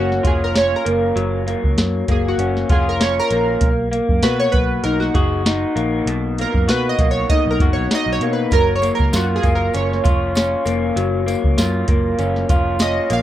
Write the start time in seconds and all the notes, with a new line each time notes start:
Already playing: F#1 F#3 A#3 C#4 F#4
0.12 snare
0.23 F1 F4 G#4, kick, closed hi-hat
0.44 A#4
0.54 C#4 C#5, snare, closed hi-hat
0.76 A#4
0.85 F#1 A#3, closed hi-hat
1.16 F#1 F#3, closed hi-hat
1.47 A#3, closed hi-hat
1.64 C#2, kick
1.77 F#2, snare, closed hi-hat
2.08 F#1 A#3 G#4, kick, closed hi-hat
2.28 F#4
2.38 F#1 C#4, closed hi-hat
2.57 snare
2.69 F1 F4 G#4, kick, closed hi-hat
2.89 A#4
3.00 C#4 C#5, snare, closed hi-hat
3.19 A#4
3.31 A#1 A#3, closed hi-hat
3.61 B1, kick, closed hi-hat
3.91 A#3, closed hi-hat
4.09 F#2, kick
4.23 B2 F#4 B4, snare, closed hi-hat
4.40 C#5
4.52 B1 B4, kick, closed hi-hat
4.84 B1 D#4 A#4, closed hi-hat
5.00 F#4, snare
5.14 F#1 F#4 G#4, kick, closed hi-hat
5.46 D#4, snare, closed hi-hat
5.76 A#1 A#3, closed hi-hat
6.06 B1 B2, closed hi-hat
6.38 A#3 A#4, closed hi-hat
6.54 F#2, kick
6.67 B2 F#4 B4, snare, closed hi-hat
6.89 D#5
6.99 B1 A#3, kick, closed hi-hat
7.11 C#5
7.29 D#4 D#5, kick, closed hi-hat
7.46 B1
7.51 A#4
7.60 F#1 F#4, kick, closed hi-hat
7.73 B1 C#5
7.91 D#4 D#5, snare, closed hi-hat
8.06 B1
8.12 C#5
8.20 B2 A#3, closed hi-hat
8.33 B4
8.51 F#1 F#3 A#4, kick, closed hi-hat, tambourine
8.76 C#5
8.82 A#3, closed hi-hat, tambourine
8.95 A#4
8.99 C#2, kick
9.13 F#2 F4 F#4, snare, closed hi-hat, tambourine
9.36 G#4
9.43 F#1 A#3, kick, closed hi-hat, tambourine
9.55 A#4
9.73 F#1 C#4 C#5, closed hi-hat, tambourine
9.93 snare
10.04 F1 F4, kick, closed hi-hat, tambourine
10.35 C#4, snare, closed hi-hat, tambourine
10.65 F1 A#3, closed hi-hat, tambourine
10.96 F#1 F#3, closed hi-hat, tambourine
11.26 A#3, closed hi-hat, tambourine
11.44 C#2, kick
11.58 F#2 F4, snare, closed hi-hat, tambourine
11.88 F#1 A#3, kick, closed hi-hat
12.19 F#1 C#4, closed hi-hat, tambourine
12.36 snare
12.49 F1 F4, kick, closed hi-hat, tambourine
12.79 C#4 D#5, snare, closed hi-hat, tambourine
13.10 A#1 A#3 F5, closed hi-hat, tambourine